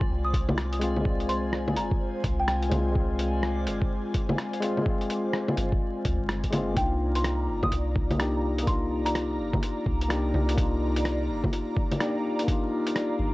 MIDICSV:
0, 0, Header, 1, 7, 480
1, 0, Start_track
1, 0, Key_signature, -3, "minor"
1, 0, Tempo, 476190
1, 1064, Time_signature, 4, 2, 24, 8
1, 13446, End_track
2, 0, Start_track
2, 0, Title_t, "Marimba"
2, 0, Program_c, 0, 12
2, 0, Note_on_c, 0, 84, 86
2, 116, Note_off_c, 0, 84, 0
2, 248, Note_on_c, 0, 87, 88
2, 500, Note_off_c, 0, 87, 0
2, 1299, Note_on_c, 0, 84, 89
2, 1557, Note_off_c, 0, 84, 0
2, 1782, Note_on_c, 0, 82, 86
2, 2038, Note_off_c, 0, 82, 0
2, 2416, Note_on_c, 0, 79, 80
2, 2472, Note_off_c, 0, 79, 0
2, 2500, Note_on_c, 0, 79, 75
2, 2598, Note_off_c, 0, 79, 0
2, 6825, Note_on_c, 0, 79, 94
2, 7079, Note_off_c, 0, 79, 0
2, 7213, Note_on_c, 0, 84, 86
2, 7463, Note_off_c, 0, 84, 0
2, 7697, Note_on_c, 0, 87, 90
2, 7945, Note_off_c, 0, 87, 0
2, 8743, Note_on_c, 0, 84, 92
2, 8998, Note_off_c, 0, 84, 0
2, 9128, Note_on_c, 0, 82, 86
2, 9461, Note_off_c, 0, 82, 0
2, 13446, End_track
3, 0, Start_track
3, 0, Title_t, "Synth texture"
3, 0, Program_c, 1, 99
3, 0, Note_on_c, 1, 74, 78
3, 6832, Note_off_c, 1, 74, 0
3, 13446, End_track
4, 0, Start_track
4, 0, Title_t, "Analog synth pad"
4, 0, Program_c, 2, 89
4, 0, Note_on_c, 2, 65, 82
4, 0, Note_on_c, 2, 72, 75
4, 0, Note_on_c, 2, 80, 95
4, 6783, Note_off_c, 2, 65, 0
4, 6783, Note_off_c, 2, 72, 0
4, 6783, Note_off_c, 2, 80, 0
4, 6820, Note_on_c, 2, 82, 93
4, 6822, Note_on_c, 2, 65, 87
4, 6823, Note_on_c, 2, 74, 80
4, 13446, Note_off_c, 2, 65, 0
4, 13446, Note_off_c, 2, 74, 0
4, 13446, Note_off_c, 2, 82, 0
4, 13446, End_track
5, 0, Start_track
5, 0, Title_t, "Tine electric piano"
5, 0, Program_c, 3, 4
5, 0, Control_c, 3, 64, 127
5, 0, Note_on_c, 3, 56, 76
5, 0, Note_on_c, 3, 60, 72
5, 0, Note_on_c, 3, 65, 86
5, 778, Note_off_c, 3, 56, 0
5, 798, Note_on_c, 3, 56, 89
5, 799, Note_off_c, 3, 60, 0
5, 819, Note_off_c, 3, 65, 0
5, 819, Note_on_c, 3, 60, 84
5, 839, Note_on_c, 3, 65, 99
5, 1009, Note_off_c, 3, 56, 0
5, 1021, Note_on_c, 3, 56, 76
5, 1040, Note_off_c, 3, 60, 0
5, 1050, Note_off_c, 3, 65, 0
5, 1061, Note_on_c, 3, 60, 71
5, 1101, Note_on_c, 3, 65, 87
5, 2701, Note_off_c, 3, 56, 0
5, 2715, Note_on_c, 3, 56, 91
5, 2721, Note_off_c, 3, 60, 0
5, 2737, Note_on_c, 3, 60, 83
5, 2741, Note_off_c, 3, 65, 0
5, 2758, Note_on_c, 3, 65, 97
5, 2926, Note_off_c, 3, 56, 0
5, 2939, Note_on_c, 3, 56, 80
5, 2959, Note_off_c, 3, 60, 0
5, 2970, Note_off_c, 3, 65, 0
5, 2981, Note_on_c, 3, 60, 77
5, 3020, Note_on_c, 3, 65, 87
5, 4620, Note_off_c, 3, 56, 0
5, 4638, Note_on_c, 3, 56, 96
5, 4641, Note_off_c, 3, 60, 0
5, 4658, Note_on_c, 3, 60, 87
5, 4661, Note_off_c, 3, 65, 0
5, 4679, Note_on_c, 3, 65, 105
5, 4846, Note_off_c, 3, 56, 0
5, 4858, Note_on_c, 3, 56, 82
5, 4879, Note_off_c, 3, 60, 0
5, 4890, Note_off_c, 3, 65, 0
5, 4896, Note_on_c, 3, 60, 78
5, 4935, Note_on_c, 3, 65, 91
5, 6539, Note_off_c, 3, 56, 0
5, 6558, Note_off_c, 3, 60, 0
5, 6558, Note_on_c, 3, 56, 98
5, 6578, Note_off_c, 3, 65, 0
5, 6578, Note_on_c, 3, 60, 91
5, 6597, Note_on_c, 3, 65, 105
5, 6782, Note_on_c, 3, 58, 78
5, 6789, Note_off_c, 3, 56, 0
5, 6799, Note_off_c, 3, 60, 0
5, 6809, Note_off_c, 3, 65, 0
5, 6809, Note_on_c, 3, 62, 74
5, 6837, Note_on_c, 3, 63, 73
5, 6839, Control_c, 3, 64, 0
5, 6864, Note_on_c, 3, 65, 92
5, 7023, Control_c, 3, 64, 127
5, 8225, Note_off_c, 3, 58, 0
5, 8238, Note_off_c, 3, 62, 0
5, 8241, Note_on_c, 3, 58, 80
5, 8253, Note_off_c, 3, 63, 0
5, 8254, Note_on_c, 3, 62, 73
5, 8266, Note_off_c, 3, 65, 0
5, 8266, Note_on_c, 3, 63, 77
5, 8280, Note_on_c, 3, 67, 93
5, 8689, Note_off_c, 3, 58, 0
5, 8701, Note_on_c, 3, 58, 84
5, 8717, Note_off_c, 3, 62, 0
5, 8723, Note_off_c, 3, 63, 0
5, 8727, Note_on_c, 3, 62, 73
5, 8730, Note_off_c, 3, 67, 0
5, 8756, Note_on_c, 3, 63, 72
5, 8780, Note_on_c, 3, 65, 91
5, 10144, Note_off_c, 3, 58, 0
5, 10158, Note_off_c, 3, 62, 0
5, 10162, Note_on_c, 3, 58, 84
5, 10172, Note_off_c, 3, 63, 0
5, 10176, Note_on_c, 3, 62, 77
5, 10184, Note_off_c, 3, 65, 0
5, 10190, Note_on_c, 3, 63, 80
5, 10203, Note_on_c, 3, 67, 92
5, 10611, Note_off_c, 3, 58, 0
5, 10623, Note_on_c, 3, 58, 82
5, 10639, Note_off_c, 3, 62, 0
5, 10645, Note_off_c, 3, 63, 0
5, 10649, Note_on_c, 3, 62, 78
5, 10652, Note_off_c, 3, 67, 0
5, 10676, Note_on_c, 3, 63, 79
5, 10702, Note_on_c, 3, 65, 91
5, 12066, Note_off_c, 3, 58, 0
5, 12078, Note_off_c, 3, 62, 0
5, 12078, Note_on_c, 3, 58, 81
5, 12092, Note_off_c, 3, 63, 0
5, 12093, Note_on_c, 3, 62, 73
5, 12103, Note_on_c, 3, 63, 76
5, 12105, Note_off_c, 3, 65, 0
5, 12116, Note_on_c, 3, 67, 95
5, 12525, Note_off_c, 3, 58, 0
5, 12537, Note_on_c, 3, 58, 81
5, 12557, Note_off_c, 3, 62, 0
5, 12562, Note_off_c, 3, 63, 0
5, 12567, Note_on_c, 3, 62, 73
5, 12568, Note_off_c, 3, 67, 0
5, 12594, Note_on_c, 3, 63, 76
5, 12620, Note_on_c, 3, 65, 95
5, 13446, Note_off_c, 3, 58, 0
5, 13446, Note_off_c, 3, 62, 0
5, 13446, Note_off_c, 3, 63, 0
5, 13446, Note_off_c, 3, 65, 0
5, 13446, End_track
6, 0, Start_track
6, 0, Title_t, "808-style bass"
6, 0, Program_c, 4, 38
6, 103, Note_on_c, 4, 36, 78
6, 1782, Note_on_c, 4, 31, 89
6, 1797, Note_off_c, 4, 36, 0
6, 2008, Note_off_c, 4, 31, 0
6, 2258, Note_on_c, 4, 36, 84
6, 2729, Note_off_c, 4, 36, 0
6, 2741, Note_on_c, 4, 36, 98
6, 3695, Note_on_c, 4, 31, 86
6, 3710, Note_off_c, 4, 36, 0
6, 3925, Note_off_c, 4, 31, 0
6, 5621, Note_on_c, 4, 31, 85
6, 5848, Note_off_c, 4, 31, 0
6, 6100, Note_on_c, 4, 38, 82
6, 6240, Note_off_c, 4, 38, 0
6, 6248, Note_on_c, 4, 31, 88
6, 6810, Note_off_c, 4, 31, 0
6, 6819, Note_on_c, 4, 36, 97
6, 7540, Note_on_c, 4, 31, 85
6, 7555, Note_off_c, 4, 36, 0
6, 7768, Note_off_c, 4, 31, 0
6, 7777, Note_on_c, 4, 36, 79
6, 9465, Note_on_c, 4, 31, 90
6, 9480, Note_off_c, 4, 36, 0
6, 9690, Note_off_c, 4, 31, 0
6, 9941, Note_on_c, 4, 36, 88
6, 10411, Note_off_c, 4, 36, 0
6, 10422, Note_on_c, 4, 36, 101
6, 11383, Note_on_c, 4, 31, 87
6, 11399, Note_off_c, 4, 36, 0
6, 11609, Note_off_c, 4, 31, 0
6, 13299, Note_on_c, 4, 31, 89
6, 13446, Note_off_c, 4, 31, 0
6, 13446, End_track
7, 0, Start_track
7, 0, Title_t, "Drums"
7, 10, Note_on_c, 9, 36, 107
7, 111, Note_off_c, 9, 36, 0
7, 340, Note_on_c, 9, 36, 96
7, 343, Note_on_c, 9, 42, 51
7, 441, Note_off_c, 9, 36, 0
7, 444, Note_off_c, 9, 42, 0
7, 492, Note_on_c, 9, 61, 61
7, 582, Note_on_c, 9, 37, 98
7, 582, Note_on_c, 9, 42, 28
7, 592, Note_off_c, 9, 61, 0
7, 683, Note_off_c, 9, 37, 0
7, 683, Note_off_c, 9, 42, 0
7, 733, Note_on_c, 9, 42, 29
7, 821, Note_off_c, 9, 42, 0
7, 821, Note_on_c, 9, 42, 54
7, 922, Note_off_c, 9, 42, 0
7, 972, Note_on_c, 9, 61, 34
7, 1061, Note_on_c, 9, 36, 111
7, 1073, Note_off_c, 9, 61, 0
7, 1161, Note_off_c, 9, 36, 0
7, 1211, Note_on_c, 9, 42, 29
7, 1301, Note_off_c, 9, 42, 0
7, 1301, Note_on_c, 9, 42, 48
7, 1402, Note_off_c, 9, 42, 0
7, 1540, Note_on_c, 9, 37, 91
7, 1641, Note_off_c, 9, 37, 0
7, 1690, Note_on_c, 9, 61, 51
7, 1778, Note_on_c, 9, 42, 51
7, 1791, Note_off_c, 9, 61, 0
7, 1879, Note_off_c, 9, 42, 0
7, 1929, Note_on_c, 9, 36, 99
7, 2030, Note_off_c, 9, 36, 0
7, 2258, Note_on_c, 9, 42, 51
7, 2259, Note_on_c, 9, 36, 94
7, 2359, Note_off_c, 9, 36, 0
7, 2359, Note_off_c, 9, 42, 0
7, 2499, Note_on_c, 9, 37, 97
7, 2499, Note_on_c, 9, 42, 29
7, 2600, Note_off_c, 9, 37, 0
7, 2600, Note_off_c, 9, 42, 0
7, 2647, Note_on_c, 9, 42, 30
7, 2737, Note_off_c, 9, 42, 0
7, 2737, Note_on_c, 9, 42, 54
7, 2737, Note_on_c, 9, 61, 55
7, 2838, Note_off_c, 9, 42, 0
7, 2838, Note_off_c, 9, 61, 0
7, 2977, Note_on_c, 9, 36, 114
7, 3078, Note_off_c, 9, 36, 0
7, 3215, Note_on_c, 9, 42, 53
7, 3316, Note_off_c, 9, 42, 0
7, 3456, Note_on_c, 9, 37, 95
7, 3557, Note_off_c, 9, 37, 0
7, 3697, Note_on_c, 9, 42, 56
7, 3798, Note_off_c, 9, 42, 0
7, 3847, Note_on_c, 9, 36, 99
7, 3948, Note_off_c, 9, 36, 0
7, 4176, Note_on_c, 9, 42, 50
7, 4177, Note_on_c, 9, 36, 94
7, 4277, Note_off_c, 9, 42, 0
7, 4278, Note_off_c, 9, 36, 0
7, 4326, Note_on_c, 9, 61, 62
7, 4419, Note_on_c, 9, 37, 95
7, 4419, Note_on_c, 9, 42, 29
7, 4427, Note_off_c, 9, 61, 0
7, 4519, Note_off_c, 9, 37, 0
7, 4519, Note_off_c, 9, 42, 0
7, 4570, Note_on_c, 9, 42, 29
7, 4659, Note_off_c, 9, 42, 0
7, 4659, Note_on_c, 9, 42, 57
7, 4760, Note_off_c, 9, 42, 0
7, 4811, Note_on_c, 9, 61, 35
7, 4898, Note_on_c, 9, 36, 112
7, 4912, Note_off_c, 9, 61, 0
7, 4999, Note_off_c, 9, 36, 0
7, 5050, Note_on_c, 9, 42, 30
7, 5140, Note_off_c, 9, 42, 0
7, 5140, Note_on_c, 9, 42, 54
7, 5241, Note_off_c, 9, 42, 0
7, 5376, Note_on_c, 9, 37, 100
7, 5477, Note_off_c, 9, 37, 0
7, 5527, Note_on_c, 9, 61, 53
7, 5618, Note_on_c, 9, 42, 55
7, 5628, Note_off_c, 9, 61, 0
7, 5718, Note_off_c, 9, 42, 0
7, 5769, Note_on_c, 9, 36, 99
7, 5870, Note_off_c, 9, 36, 0
7, 6098, Note_on_c, 9, 42, 55
7, 6100, Note_on_c, 9, 36, 90
7, 6199, Note_off_c, 9, 42, 0
7, 6201, Note_off_c, 9, 36, 0
7, 6339, Note_on_c, 9, 37, 98
7, 6339, Note_on_c, 9, 42, 31
7, 6440, Note_off_c, 9, 37, 0
7, 6440, Note_off_c, 9, 42, 0
7, 6488, Note_on_c, 9, 42, 31
7, 6490, Note_on_c, 9, 36, 56
7, 6578, Note_off_c, 9, 42, 0
7, 6578, Note_on_c, 9, 42, 59
7, 6578, Note_on_c, 9, 61, 58
7, 6590, Note_off_c, 9, 36, 0
7, 6678, Note_off_c, 9, 42, 0
7, 6678, Note_off_c, 9, 61, 0
7, 6819, Note_on_c, 9, 42, 58
7, 6820, Note_on_c, 9, 36, 118
7, 6920, Note_off_c, 9, 42, 0
7, 6921, Note_off_c, 9, 36, 0
7, 7210, Note_on_c, 9, 42, 56
7, 7302, Note_off_c, 9, 42, 0
7, 7302, Note_on_c, 9, 37, 104
7, 7302, Note_on_c, 9, 42, 57
7, 7402, Note_off_c, 9, 37, 0
7, 7402, Note_off_c, 9, 42, 0
7, 7690, Note_on_c, 9, 61, 54
7, 7691, Note_on_c, 9, 36, 107
7, 7781, Note_on_c, 9, 42, 57
7, 7790, Note_off_c, 9, 61, 0
7, 7792, Note_off_c, 9, 36, 0
7, 7882, Note_off_c, 9, 42, 0
7, 8021, Note_on_c, 9, 36, 100
7, 8122, Note_off_c, 9, 36, 0
7, 8171, Note_on_c, 9, 42, 32
7, 8171, Note_on_c, 9, 61, 57
7, 8262, Note_off_c, 9, 42, 0
7, 8262, Note_on_c, 9, 37, 106
7, 8262, Note_on_c, 9, 42, 55
7, 8272, Note_off_c, 9, 61, 0
7, 8363, Note_off_c, 9, 37, 0
7, 8363, Note_off_c, 9, 42, 0
7, 8652, Note_on_c, 9, 42, 56
7, 8741, Note_on_c, 9, 36, 127
7, 8742, Note_off_c, 9, 42, 0
7, 8742, Note_on_c, 9, 42, 59
7, 8841, Note_off_c, 9, 36, 0
7, 8842, Note_off_c, 9, 42, 0
7, 9133, Note_on_c, 9, 42, 59
7, 9225, Note_off_c, 9, 42, 0
7, 9225, Note_on_c, 9, 37, 102
7, 9225, Note_on_c, 9, 42, 54
7, 9326, Note_off_c, 9, 37, 0
7, 9326, Note_off_c, 9, 42, 0
7, 9611, Note_on_c, 9, 36, 105
7, 9614, Note_on_c, 9, 61, 51
7, 9705, Note_on_c, 9, 42, 60
7, 9712, Note_off_c, 9, 36, 0
7, 9715, Note_off_c, 9, 61, 0
7, 9806, Note_off_c, 9, 42, 0
7, 9941, Note_on_c, 9, 36, 105
7, 10042, Note_off_c, 9, 36, 0
7, 10094, Note_on_c, 9, 42, 32
7, 10183, Note_off_c, 9, 42, 0
7, 10183, Note_on_c, 9, 37, 112
7, 10183, Note_on_c, 9, 42, 58
7, 10283, Note_off_c, 9, 37, 0
7, 10283, Note_off_c, 9, 42, 0
7, 10424, Note_on_c, 9, 61, 38
7, 10525, Note_off_c, 9, 61, 0
7, 10572, Note_on_c, 9, 42, 60
7, 10660, Note_on_c, 9, 36, 126
7, 10664, Note_off_c, 9, 42, 0
7, 10664, Note_on_c, 9, 42, 56
7, 10761, Note_off_c, 9, 36, 0
7, 10765, Note_off_c, 9, 42, 0
7, 11052, Note_on_c, 9, 42, 57
7, 11140, Note_off_c, 9, 42, 0
7, 11140, Note_on_c, 9, 37, 109
7, 11140, Note_on_c, 9, 42, 57
7, 11241, Note_off_c, 9, 37, 0
7, 11241, Note_off_c, 9, 42, 0
7, 11530, Note_on_c, 9, 36, 108
7, 11533, Note_on_c, 9, 61, 54
7, 11622, Note_on_c, 9, 42, 55
7, 11631, Note_off_c, 9, 36, 0
7, 11634, Note_off_c, 9, 61, 0
7, 11722, Note_off_c, 9, 42, 0
7, 11860, Note_on_c, 9, 36, 106
7, 11960, Note_off_c, 9, 36, 0
7, 12010, Note_on_c, 9, 42, 32
7, 12010, Note_on_c, 9, 61, 49
7, 12100, Note_off_c, 9, 42, 0
7, 12100, Note_on_c, 9, 37, 105
7, 12100, Note_on_c, 9, 42, 57
7, 12111, Note_off_c, 9, 61, 0
7, 12201, Note_off_c, 9, 37, 0
7, 12201, Note_off_c, 9, 42, 0
7, 12490, Note_on_c, 9, 42, 58
7, 12579, Note_on_c, 9, 36, 118
7, 12581, Note_off_c, 9, 42, 0
7, 12581, Note_on_c, 9, 42, 52
7, 12680, Note_off_c, 9, 36, 0
7, 12682, Note_off_c, 9, 42, 0
7, 12970, Note_on_c, 9, 42, 53
7, 13061, Note_off_c, 9, 42, 0
7, 13061, Note_on_c, 9, 37, 104
7, 13061, Note_on_c, 9, 42, 52
7, 13162, Note_off_c, 9, 37, 0
7, 13162, Note_off_c, 9, 42, 0
7, 13446, End_track
0, 0, End_of_file